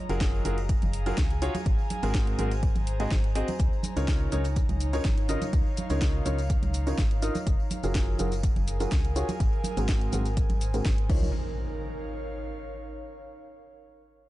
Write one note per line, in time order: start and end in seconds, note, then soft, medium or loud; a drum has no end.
0.00 3.60 G#4 medium
0.00 0.50 C#5 medium
0.00 0.50 D#5 medium
0.00 8.24 A#5 medium
0.09 0.41 F#1 loud
0.09 0.42 F#3 medium
0.09 0.42 F4 medium
0.09 0.42 F#4 medium
0.09 0.42 G#4 medium
0.09 0.42 A#4 medium
0.09 closed hi-hat medium
0.09 tambourine medium
0.15 2.44 F5 medium
0.21 kick loud
0.21 snare loud
0.21 closed hi-hat medium
0.21 tambourine medium
0.33 4.85 G#5 medium
0.33 tambourine soft
0.45 0.77 F#1 medium
0.45 0.57 F#3 medium
0.45 0.57 F4 medium
0.45 0.57 F#4 medium
0.45 0.57 G#4 medium
0.45 0.57 A#4 medium
0.45 open hi-hat loud
0.45 high conga medium
0.58 closed hi-hat soft
0.58 tambourine medium
0.69 kick loud
0.69 closed hi-hat medium
0.69 tambourine medium
0.82 1.13 F#1 loud
0.82 closed hi-hat soft
0.82 tambourine soft
0.82 high conga loud
0.93 open hi-hat loud
1.06 1.17 F#3 medium
1.06 1.17 F4 medium
1.06 1.17 F#4 medium
1.06 1.17 G#4 medium
1.06 1.17 A#4 medium
1.06 closed hi-hat soft
1.06 tambourine medium
1.17 1.50 C#2 medium
1.17 kick loud
1.17 snare loud
1.17 closed hi-hat medium
1.17 tambourine medium
1.17 high conga medium
1.30 closed hi-hat soft
1.30 tambourine soft
1.42 1.53 F4 loud
1.42 1.53 F#4 medium
1.42 1.53 G#4 medium
1.42 1.53 C#5 loud
1.42 open hi-hat loud
1.55 closed hi-hat medium
1.55 tambourine medium
1.55 high conga loud
1.66 1.76 G#1 loud
1.66 kick loud
1.66 closed hi-hat medium
1.66 tambourine medium
1.79 tambourine soft
1.90 open hi-hat loud
1.90 high conga medium
2.03 2.34 G#1 loud
2.03 2.36 G#2 medium
2.03 2.36 C4 medium
2.03 2.36 F#4 medium
2.03 2.36 G#4 medium
2.03 2.36 A#4 medium
2.03 3.59 C5 medium
2.03 closed hi-hat soft
2.03 tambourine medium
2.14 kick loud
2.14 snare loud
2.14 closed hi-hat medium
2.27 closed hi-hat soft
2.27 tambourine soft
2.39 2.71 G#1 medium
2.39 2.50 G#2 medium
2.39 2.50 C4 medium
2.39 2.50 F#4 medium
2.39 2.50 G#4 medium
2.39 2.50 A#4 medium
2.39 open hi-hat loud
2.39 high conga medium
2.51 closed hi-hat medium
2.51 tambourine medium
2.63 kick loud
2.63 closed hi-hat medium
2.63 tambourine medium
2.75 3.07 G#1 medium
2.75 closed hi-hat soft
2.75 tambourine soft
2.75 high conga medium
2.87 open hi-hat loud
3.00 3.10 G#2 medium
3.00 3.10 C4 medium
3.00 3.10 F#4 medium
3.00 3.10 G#4 medium
3.00 3.10 D#5 loud
3.00 closed hi-hat soft
3.00 tambourine medium
3.11 3.43 G#1 loud
3.11 kick loud
3.11 snare loud
3.11 open hi-hat medium
3.11 tambourine medium
3.11 high conga medium
3.24 closed hi-hat soft
3.24 tambourine soft
3.35 3.47 C4 loud
3.35 3.47 F#4 medium
3.35 3.47 G#4 medium
3.35 3.47 D#5 loud
3.35 open hi-hat loud
3.48 closed hi-hat medium
3.48 tambourine medium
3.48 high conga medium
3.59 3.69 C#2 medium
3.59 8.23 D#4 medium
3.59 kick loud
3.59 closed hi-hat medium
3.59 tambourine medium
3.59 shaker soft
3.73 tambourine soft
3.78 8.24 C#5 medium
3.83 open hi-hat loud
3.83 high conga medium
3.83 shaker medium
3.97 4.28 C#2 loud
3.97 4.29 C#3 medium
3.97 4.29 D#4 medium
3.97 4.29 F4 medium
3.97 4.29 A#4 medium
3.97 4.29 C#5 medium
3.97 closed hi-hat soft
3.97 tambourine medium
3.97 shaker soft
4.07 kick loud
4.07 snare loud
4.07 closed hi-hat medium
4.07 tambourine medium
4.07 shaker soft
4.20 tambourine soft
4.32 4.64 C#2 medium
4.32 4.44 C#3 medium
4.32 4.44 D#4 medium
4.32 4.44 F4 medium
4.32 4.44 A#4 medium
4.32 4.44 C#5 medium
4.32 10.03 F5 medium
4.32 open hi-hat loud
4.32 high conga medium
4.32 shaker medium
4.44 closed hi-hat soft
4.44 tambourine medium
4.44 shaker soft
4.56 kick loud
4.56 closed hi-hat medium
4.56 tambourine medium
4.56 shaker soft
4.69 5.00 C#2 loud
4.69 closed hi-hat soft
4.69 tambourine soft
4.69 high conga medium
4.80 open hi-hat loud
4.80 shaker medium
4.93 5.04 C#3 medium
4.93 5.04 D#4 medium
4.93 5.04 F4 medium
4.93 5.04 A#4 medium
4.93 5.04 C#5 loud
4.93 closed hi-hat soft
4.93 tambourine medium
4.93 shaker soft
5.04 5.37 G#1 medium
5.04 kick loud
5.04 snare loud
5.04 closed hi-hat medium
5.04 tambourine medium
5.04 high conga medium
5.04 shaker soft
5.18 closed hi-hat soft
5.18 tambourine soft
5.29 5.40 C#3 medium
5.29 5.40 D#4 medium
5.29 5.40 F4 medium
5.29 5.40 A#4 medium
5.29 5.40 D#5 loud
5.29 open hi-hat loud
5.29 shaker medium
5.42 closed hi-hat medium
5.42 tambourine medium
5.42 high conga medium
5.42 shaker soft
5.53 5.63 C#2 loud
5.53 kick loud
5.53 closed hi-hat medium
5.53 tambourine medium
5.53 shaker soft
5.66 tambourine soft
5.77 open hi-hat loud
5.77 high conga loud
5.77 shaker medium
5.90 6.21 C#2 loud
5.90 6.23 C#3 medium
5.90 6.23 D#4 medium
5.90 6.23 F4 medium
5.90 6.23 A#4 medium
5.90 6.23 C#5 medium
5.90 closed hi-hat medium
5.90 tambourine medium
5.90 shaker soft
6.01 kick loud
6.01 snare loud
6.01 closed hi-hat medium
6.01 shaker soft
6.14 tambourine soft
6.26 6.58 C#2 medium
6.26 6.37 C#3 medium
6.26 6.37 D#4 medium
6.26 6.37 F4 medium
6.26 6.37 A#4 medium
6.26 6.37 C#5 medium
6.26 open hi-hat loud
6.26 high conga medium
6.26 shaker medium
6.39 closed hi-hat soft
6.39 tambourine medium
6.39 shaker soft
6.49 kick loud
6.49 closed hi-hat medium
6.49 tambourine medium
6.49 shaker soft
6.63 6.94 C#2 medium
6.63 closed hi-hat soft
6.63 tambourine soft
6.63 high conga medium
6.74 open hi-hat loud
6.74 shaker medium
6.87 6.97 C#3 medium
6.87 6.97 D#4 medium
6.87 6.97 F4 medium
6.87 6.97 A#4 medium
6.87 6.97 C#5 medium
6.87 closed hi-hat soft
6.87 tambourine medium
6.87 shaker soft
6.98 7.30 G#1 medium
6.98 kick loud
6.98 snare loud
6.98 open hi-hat medium
6.98 tambourine medium
6.98 high conga medium
6.98 shaker soft
7.11 closed hi-hat soft
7.11 tambourine soft
7.22 7.34 D#4 loud
7.22 7.34 F4 medium
7.22 7.34 A#4 medium
7.22 7.34 D#5 loud
7.22 open hi-hat loud
7.22 shaker medium
7.35 closed hi-hat soft
7.35 tambourine medium
7.35 high conga medium
7.35 shaker soft
7.46 7.56 F#1 medium
7.46 11.09 G#4 medium
7.46 kick loud
7.46 closed hi-hat medium
7.46 shaker soft
7.60 tambourine soft
7.71 11.10 A#4 loud
7.71 open hi-hat loud
7.71 high conga medium
7.71 shaker medium
7.84 8.15 F#1 loud
7.84 8.17 F#3 medium
7.84 8.17 F4 medium
7.84 8.17 F#4 medium
7.84 8.17 G#4 medium
7.84 8.17 A#4 medium
7.84 closed hi-hat medium
7.84 tambourine medium
7.84 shaker soft
7.90 11.10 G#5 medium
7.95 kick loud
7.95 snare loud
7.95 closed hi-hat medium
7.95 tambourine medium
7.95 shaker soft
8.07 tambourine soft
8.19 8.51 F#1 medium
8.19 8.31 F#3 medium
8.19 8.31 F4 medium
8.19 8.31 F#4 medium
8.19 8.31 G#4 medium
8.19 8.31 A#4 medium
8.19 open hi-hat loud
8.19 high conga medium
8.19 shaker medium
8.32 closed hi-hat medium
8.32 tambourine medium
8.32 shaker soft
8.43 kick loud
8.43 closed hi-hat medium
8.43 tambourine medium
8.43 shaker soft
8.56 8.87 F#1 loud
8.56 closed hi-hat soft
8.56 tambourine soft
8.56 high conga medium
8.68 open hi-hat loud
8.68 shaker medium
8.80 8.91 F#3 medium
8.80 8.91 F4 medium
8.80 8.91 F#4 medium
8.80 8.91 G#4 medium
8.80 8.91 A#4 loud
8.80 closed hi-hat medium
8.80 tambourine medium
8.80 shaker soft
8.91 9.24 C#2 medium
8.91 kick loud
8.91 snare loud
8.91 closed hi-hat medium
8.91 tambourine medium
8.91 high conga medium
8.91 shaker soft
9.05 closed hi-hat soft
9.05 tambourine soft
9.16 9.28 F4 medium
9.16 9.27 F#4 medium
9.16 9.28 G#4 medium
9.16 9.28 C#5 loud
9.16 open hi-hat loud
9.16 shaker medium
9.29 closed hi-hat medium
9.29 tambourine medium
9.29 high conga medium
9.29 shaker soft
9.40 9.50 G#1 loud
9.40 kick loud
9.40 closed hi-hat medium
9.40 tambourine medium
9.40 shaker soft
9.53 tambourine soft
9.64 open hi-hat loud
9.64 high conga medium
9.64 shaker medium
9.77 10.08 G#1 loud
9.77 10.10 G#2 medium
9.77 10.10 C4 medium
9.77 10.10 F#4 medium
9.77 10.10 G#4 medium
9.77 10.10 A#4 medium
9.77 closed hi-hat medium
9.77 tambourine medium
9.77 shaker soft
9.89 kick loud
9.89 snare loud
9.89 closed hi-hat medium
9.89 shaker soft
10.01 closed hi-hat soft
10.01 tambourine soft
10.13 10.45 G#1 medium
10.13 10.24 G#2 medium
10.13 10.24 C4 medium
10.13 10.24 F#4 medium
10.13 10.24 G#4 medium
10.13 10.24 A#4 medium
10.13 open hi-hat loud
10.13 high conga medium
10.13 shaker medium
10.22 11.10 C5 medium
10.22 closed hi-hat medium
10.22 tambourine medium
10.22 shaker soft
10.37 kick loud
10.37 closed hi-hat medium
10.37 tambourine medium
10.37 shaker soft
10.49 10.81 G#1 loud
10.49 closed hi-hat soft
10.49 tambourine soft
10.49 high conga loud
10.61 open hi-hat medium
10.61 shaker medium
10.74 10.84 G#2 medium
10.74 10.84 C4 medium
10.74 10.84 F#4 medium
10.74 10.84 G#4 medium
10.74 10.84 A#4 medium
10.74 closed hi-hat medium
10.74 tambourine medium
10.74 shaker soft
10.85 11.09 G#1 loud
10.85 kick loud
10.85 snare loud
10.85 open hi-hat medium
10.85 tambourine medium
10.85 high conga medium
10.85 shaker soft
10.98 closed hi-hat soft
10.98 tambourine soft
11.10 11.32 C#2 loud
11.10 11.28 D#4 medium
11.10 12.99 D#4 medium
11.10 11.28 F4 medium
11.10 11.28 A#4 medium
11.10 11.28 C#5 loud
11.10 kick loud
11.10 crash medium
11.10 impact medium
11.17 12.99 A#4 medium
11.22 tambourine medium
11.22 high conga loud
11.49 13.23 C#5 medium
11.56 13.23 F5 medium